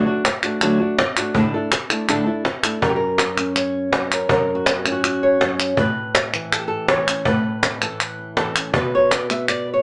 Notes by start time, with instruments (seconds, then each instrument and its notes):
0.06 nylon-string guitar A3 D4 F#4
0.25 muted nylon-string guitar stroke, cajon slap, clap
0.43 nylon-string guitar A3 D4 F#4, cajon slap, clap
0.61 nylon-string guitar D3 F#3 A3 D4 F#4, clap
0.80 nylon-string guitar A3 D4 F#4
0.98 muted nylon-string guitar stroke, cajon slap
1.17 nylon-string guitar A3 D4 F#4, clap
1.35 nylon-string guitar A2 D3 A3 D4 E4 A4, cajon bass
1.54 nylon-string guitar A3 D4 E4 A4, cajon slap
1.72 muted nylon-string guitar stroke, cajon slap, clap
1.90 nylon-string guitar A3 D4 E4 A4, cajon slap, clap
2.08 nylon-string guitar A2 D3 A3 D4 E4 A4, clap
2.26 nylon-string guitar A3 D4 E4 A4, cajon slap
2.45 muted nylon-string guitar stroke, cajon slap
2.63 nylon-string guitar A3 D4 E4 A4, clap
2.82 nylon-string guitar F#2 A#4, cajon bass
2.88 nylon-string guitar G4
2.96 nylon-string guitar A#4
3.00 cajon slap
3.18 nylon-string guitar C#4, cajon slap, clap
3.38 nylon-string guitar C#4, clap
3.56 nylon-string guitar C#5, clap
3.75 cajon slap
3.93 nylon-string guitar F#2, cajon slap
4.12 nylon-string guitar A#4, clap
4.29 nylon-string guitar F#2 A#4, cajon bass
4.49 cajon slap
4.55 nylon-string guitar F#4
4.66 nylon-string guitar G4, cajon slap, clap
4.86 nylon-string guitar C#4, cajon slap, clap
4.92 nylon-string guitar F#4
5.04 nylon-string guitar F#4, clap
5.22 nylon-string guitar C#5, cajon slap
5.41 nylon-string guitar F#2, cajon slap
5.60 clap
5.77 nylon-string guitar A2 B4, cajon bass
5.96 cajon slap
6.15 cajon slap, clap
6.34 nylon-string guitar E3, cajon slap, clap
6.52 nylon-string guitar A4, clap
6.59 nylon-string guitar G4
6.68 nylon-string guitar A4, cajon slap
6.88 nylon-string guitar E3 C#5, cajon slap
7.08 nylon-string guitar C#4, clap
7.25 nylon-string guitar A2 B4, cajon bass
7.44 cajon slap
7.63 cajon slap, clap
7.81 nylon-string guitar E3 A4, cajon slap, clap
8.00 nylon-string guitar B4, clap
8.19 cajon slap
8.37 nylon-string guitar E3 A4, cajon slap
8.56 nylon-string guitar C#4, clap
8.74 nylon-string guitar B2 B3 F#4 B4, cajon bass
8.93 nylon-string guitar C#5, cajon slap
9.11 nylon-string guitar D5, cajon slap, clap
9.30 nylon-string guitar B3 E5, cajon slap, clap
9.48 nylon-string guitar D5, clap
9.67 nylon-string guitar B4, cajon slap
9.74 nylon-string guitar C#5